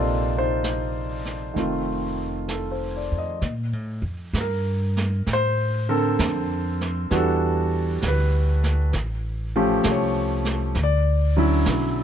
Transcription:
Already playing: upright bass A#1, grand piano C3 A#3 C4 D4 D#4 F4 A4 A#4 C5 D5
0.38 grand piano D#4 C5
0.64 brush sweep, snare, hi-hat pedal
1.25 snare
1.54 upright bass F1, grand piano D#3 A3 C4, brush sweep, snare
1.59 grand piano F4
2.48 grand piano A4, brush sweep, snare, hi-hat pedal
2.72 grand piano C5
2.97 grand piano D5
3.12 upright bass F2
3.18 grand piano D#5
3.42 upright bass A#2, brush sweep, snare
3.73 upright bass A2
4.02 upright bass F2
4.33 upright bass G2, snare, hi-hat pedal
4.41 grand piano A#4
4.97 snare
5.27 upright bass A2, brush sweep, snare
5.33 grand piano C5
5.89 grand piano D3 C4 A4 A#4
6.19 upright bass F2, snare, hi-hat pedal
6.81 snare
7.11 upright bass E2, grand piano E3 G3 D4 F#4, brush sweep, snare
7.17 grand piano A4
8.02 upright bass D2, snare, hi-hat pedal
8.08 grand piano B4
8.64 snare
8.93 upright bass A1, brush sweep, snare
9.56 grand piano F3 A3 C#4 G4
9.84 upright bass C2, snare, hi-hat pedal
9.92 grand piano C#5
10.45 snare
10.75 upright bass D2, brush sweep, snare
10.83 grand piano D5
11.36 grand piano D3 F#3 C#4 E4
11.66 upright bass B1, snare, hi-hat pedal

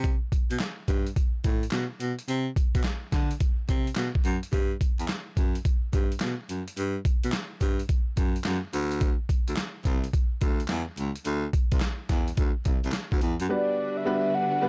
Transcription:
Already playing: baritone saxophone C3
0.04 kick, closed hi-hat
0.32 kick, closed hi-hat
0.51 baritone saxophone B2, closed hi-hat
0.59 snare, clap, closed hi-hat
0.88 baritone saxophone G2, kick, closed hi-hat
1.07 closed hi-hat
1.16 kick, closed hi-hat
1.44 baritone saxophone A2, kick, closed hi-hat
1.63 closed hi-hat
1.71 baritone saxophone B2, snare, clap, closed hi-hat
2.00 baritone saxophone B2, closed hi-hat
2.19 closed hi-hat
2.28 baritone saxophone C3, closed hi-hat
2.56 kick, closed hi-hat
2.75 baritone saxophone B2, kick, closed hi-hat
2.83 snare, clap, closed hi-hat
3.12 baritone saxophone D3, kick, snare, closed hi-hat
3.31 closed hi-hat
3.40 kick, closed hi-hat
3.69 baritone saxophone C3, kick, closed hi-hat
3.87 closed hi-hat
3.96 baritone saxophone B2, snare, clap, closed hi-hat
4.15 kick
4.25 baritone saxophone F#2, closed hi-hat
4.43 closed hi-hat
4.53 baritone saxophone G2, kick, closed hi-hat
4.81 kick, closed hi-hat
4.99 baritone saxophone E2, closed hi-hat
5.08 snare, clap, closed hi-hat
5.37 baritone saxophone F#2, kick, closed hi-hat
5.55 closed hi-hat
5.65 kick, closed hi-hat
5.93 baritone saxophone G2, kick, closed hi-hat
6.12 closed hi-hat
6.20 baritone saxophone B2, snare, clap, closed hi-hat
6.49 baritone saxophone F#2, closed hi-hat
6.68 closed hi-hat
6.77 baritone saxophone G2, closed hi-hat
7.05 kick, closed hi-hat
7.23 baritone saxophone B2, closed hi-hat
7.32 snare, clap, closed hi-hat
7.61 baritone saxophone G2, kick, closed hi-hat
7.79 closed hi-hat
7.89 kick, closed hi-hat
8.17 baritone saxophone F#2, kick, closed hi-hat
8.36 closed hi-hat
8.44 baritone saxophone F#2, snare, clap, closed hi-hat
8.73 baritone saxophone D2, closed hi-hat
8.91 closed hi-hat
9.01 kick, closed hi-hat
9.29 kick, closed hi-hat
9.48 baritone saxophone D2, closed hi-hat
9.56 snare, clap, closed hi-hat
9.85 baritone saxophone C2, kick, closed hi-hat
10.04 closed hi-hat
10.13 kick, closed hi-hat
10.41 baritone saxophone D2, kick, closed hi-hat
10.60 closed hi-hat
10.68 baritone saxophone E2, snare, clap, closed hi-hat
10.97 baritone saxophone C#2, closed hi-hat
11.16 closed hi-hat
11.25 baritone saxophone D2, closed hi-hat
11.53 kick, closed hi-hat
11.72 baritone saxophone C2, kick, closed hi-hat
11.80 snare, clap, closed hi-hat
12.09 baritone saxophone E2, kick, snare, closed hi-hat
12.28 closed hi-hat
12.37 baritone saxophone D2, kick, closed hi-hat
12.65 baritone saxophone C2, kick, closed hi-hat
12.84 baritone saxophone C2, closed hi-hat
12.92 snare, clap, closed hi-hat
13.12 baritone saxophone D2, kick
13.21 baritone saxophone E2, closed hi-hat
13.40 baritone saxophone F#2, closed hi-hat
13.49 string section D3 G3 D4 F#4 B4, grand piano G3 B3 D4 F#4 B4, soft synth lead D5
13.97 soft synth lead E5
14.05 grand piano G3 B3 D4 F#4 B4
14.34 soft synth lead F#5
14.62 grand piano G3 B3 D4 F#4 B4, soft synth lead D5

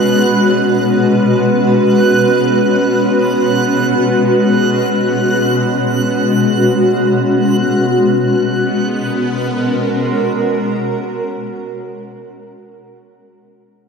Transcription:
Already playing: ambient pad B2 G#3 C#4 F#4 B4, synth drone B3, synth texture F#6
7.83 ambient pad B2, synth drone B3
7.96 ambient pad G#3
8.10 ambient pad C#4
8.24 ambient pad F#4
8.34 ambient pad A#4

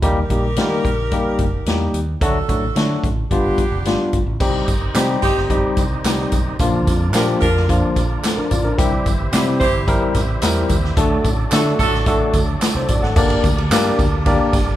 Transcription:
0.02 picked electric bass D#2, tine electric piano G3 A#3 D#4 G4, saxophone section D#4 G4 A#4, kick, closed hi-hat
0.30 picked electric bass A#1, tine electric piano G3 A#3 D#4 G4, kick, closed hi-hat
0.56 picked electric bass D#3, tine electric piano G3 A#3 D#4 G4, snare, closed hi-hat
0.85 picked electric bass A#1, kick, closed hi-hat
1.11 tine electric piano G3 A#3 D#4 G4, kick, closed hi-hat
1.38 picked electric bass F#1, kick, closed hi-hat
1.66 picked electric bass E2, tine electric piano G3 A#3 D#4 G4, snare, closed hi-hat
1.94 picked electric bass D#2, closed hi-hat
2.21 picked electric bass D2, tine electric piano F#3 A3 D4 F#4, saxophone section D4 F#4 A4, kick, closed hi-hat
2.49 picked electric bass A1, tine electric piano F#3 A3 D4 F#4, kick, closed hi-hat
2.76 picked electric bass D3, tine electric piano F#3 A3 D4 F#4, snare, closed hi-hat
3.04 picked electric bass A1, kick, closed hi-hat
3.31 picked electric bass G1, tine electric piano G3 B3 D4 F4, saxophone section B3 D4 G4, kick, closed hi-hat
3.58 muted picked electric bass stroke, kick, closed hi-hat
3.72 picked electric bass F1
3.85 picked electric bass G1, tine electric piano G3 B3 D4 F4, snare, closed hi-hat
4.13 picked electric bass G1, kick, closed hi-hat
4.26 picked electric bass A1
4.40 picked electric bass C2, tonewheel organ D#3 G3 C4 D#4, tine electric piano G3 C4 D#4 G4, kick, crash, tambourine
4.68 picked electric bass G1, kick, closed hi-hat, tambourine
4.95 picked electric bass C3, tine electric piano G3 C4 D#4 G4, saxophone section C4 D#4 G4, snare, clap, closed hi-hat, tambourine
5.22 picked electric bass G1, saxophone section C4 D#4 G4, kick, closed hi-hat, tambourine
5.38 snare
5.50 tine electric piano G3 C4 D#4 G4, kick, closed hi-hat
5.77 picked electric bass C2, kick, closed hi-hat, tambourine
6.04 picked electric bass C2, tine electric piano G3 C4 D#4 G4, snare, clap, closed hi-hat, tambourine
6.32 picked electric bass B1, kick, closed hi-hat, tambourine
6.59 picked electric bass A#1, tonewheel organ D3 F3 A#3 D4, tine electric piano F3 A#3 D4 F4, kick, closed hi-hat, tambourine
6.87 picked electric bass F2, kick, closed hi-hat, tambourine
7.14 picked electric bass A#2, tine electric piano F3 A#3 D4 G4, saxophone section D4 F4 A#4, snare, clap, closed hi-hat, tambourine
7.41 picked electric bass F2, saxophone section D4 F4 A#4, kick, closed hi-hat
7.57 snare
7.69 tine electric piano F3 A#3 D4 F4, kick, closed hi-hat, tambourine
7.96 picked electric bass A#1, kick, closed hi-hat, tambourine
8.24 tine electric piano C4 A4, snare, clap, closed hi-hat, tambourine
8.37 tine electric piano D4 A#4, muted picked electric bass stroke
8.51 picked electric bass A1, tine electric piano F4 D5, kick, closed hi-hat, tambourine
8.64 tine electric piano D4 A#4
8.77 picked electric bass C2, tonewheel organ E3 G3 C4 E4, tine electric piano G3 C4 E4 G4, kick, closed hi-hat, tambourine
9.06 picked electric bass G1, kick, closed hi-hat, tambourine
9.32 picked electric bass C3, tine electric piano G3 C4 E4 G4, saxophone section E4 G4 C5, snare, clap, closed hi-hat, tambourine
9.60 picked electric bass G1, saxophone section E4 G4 C5, kick, closed hi-hat
9.87 tine electric piano G3 C4 E4 A#4, kick, closed hi-hat, tambourine
10.14 picked electric bass A1, kick, snare, closed hi-hat, tambourine
10.42 picked electric bass E2, tine electric piano G3 C4 E4 A#4, snare, clap, closed hi-hat, tambourine
10.69 picked electric bass D#2, kick, closed hi-hat, tambourine
10.84 snare
10.97 picked electric bass D2, tonewheel organ D3 F#3 A3 D4, tine electric piano A3 D4 F#4 A4, kick, closed hi-hat, tambourine
11.24 picked electric bass A1, kick, closed hi-hat, tambourine
11.51 picked electric bass D3, tine electric piano A3 D4 F#4 A4, saxophone section D4 F#4 A4, snare, clap, closed hi-hat, tambourine
11.79 picked electric bass A1, saxophone section D4 F#4 A4, kick, closed hi-hat, tambourine
11.94 snare
12.06 tine electric piano A3 D4 F#4 A4, kick, closed hi-hat, tambourine
12.33 picked electric bass D2, kick, closed hi-hat, tambourine
12.61 snare, clap, closed hi-hat, tambourine
12.75 picked electric bass C2, tine electric piano C5
12.88 picked electric bass A1, tine electric piano F#4 D5, kick, closed hi-hat, tambourine
13.02 picked electric bass G#1, tine electric piano A4 F#5, snare
13.16 picked electric bass G1, tonewheel organ D3 G3 A#3 D4, tine electric piano A#3 D4 G4 A#4 D5, kick, crash, tambourine
13.30 ride
13.44 picked electric bass D2, kick, ride, tambourine
13.58 ride
13.71 picked electric bass G2, tine electric piano A#3 D4 G4 A#4 D5, snare, clap, ride, tambourine
13.99 picked electric bass D2, kick, ride, tambourine
14.26 tine electric piano A#3 D4 G4 A#4 D5, kick, ride, tambourine
14.53 picked electric bass G1, kick, snare, ride, tambourine

